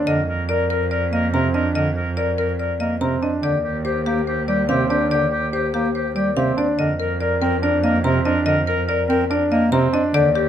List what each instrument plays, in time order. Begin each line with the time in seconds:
Already playing: grand piano D4, marimba D5
0.07 cello F2, bass clarinet D3, oboe A#4, marimba D#5
0.29 oboe A#4
0.49 grand piano A#4, oboe A#4, marimba D5
0.70 marimba A#4, oboe A#4
0.91 oboe A#4, marimba D5
1.12 bass clarinet A#3, oboe A#4, marimba D#5
1.33 bass clarinet C3, grand piano C4, oboe A#4, marimba A#5
1.54 grand piano D4, oboe A#4, marimba D#5
1.75 bass clarinet D3, oboe A#4, marimba D#5
1.97 oboe A#4
2.17 oboe A#4, grand piano A#4, marimba D5
2.38 oboe A#4, marimba A#4
2.59 oboe A#4, marimba D5
2.80 bass clarinet A#3, oboe A#4, marimba D#5
3.01 bass clarinet C3, grand piano C4, oboe A#4, marimba A#5
3.22 grand piano D4, marimba D#5
3.42 cello D#2, bass clarinet D3, oboe G4, marimba D5
3.64 oboe G4
3.85 oboe G4, grand piano G4, marimba C5
4.06 bass clarinet A#3, oboe G4, marimba G4
4.27 oboe G4, marimba C5
4.48 bass clarinet G3, oboe G4, marimba D5
4.69 bass clarinet C3, grand piano C4, oboe G4, marimba F5
4.90 grand piano D4, oboe G4, marimba D5
5.11 bass clarinet D3, oboe G4, marimba D5
5.32 oboe G4
5.53 grand piano G4, oboe G4, marimba C5
5.74 bass clarinet A#3, marimba G4, oboe G4
5.95 oboe G4, marimba C5
6.15 bass clarinet G3, oboe G4, marimba D5
6.37 bass clarinet C3, grand piano C4, oboe G4, marimba F5
6.57 grand piano D4, marimba D5
6.79 cello F2, bass clarinet D3, oboe A#4, marimba D#5
7.00 marimba A#4, oboe A#4
7.21 grand piano A#4, oboe A#4, marimba D5
7.41 bass clarinet C4, marimba A#4, oboe A#4
7.62 grand piano D4, oboe A#4, marimba D5
7.83 bass clarinet A#3, oboe A#4, marimba D#5
8.04 bass clarinet C3, grand piano C4, oboe A#4, marimba A#5
8.25 grand piano D4, oboe A#4, marimba D#5
8.46 bass clarinet D3, oboe A#4, marimba D#5
8.67 oboe A#4, marimba A#4
8.87 oboe A#4, grand piano A#4, marimba D5
9.09 bass clarinet C4, oboe A#4, marimba A#4
9.30 grand piano D4, oboe A#4, marimba D5
9.51 bass clarinet A#3, oboe A#4, marimba D#5
9.72 bass clarinet C3, grand piano C4, oboe A#4, marimba A#5
9.93 grand piano D4, marimba D#5
10.14 cello D#2, bass clarinet D3, oboe G4, marimba D5
10.35 oboe G4, marimba G4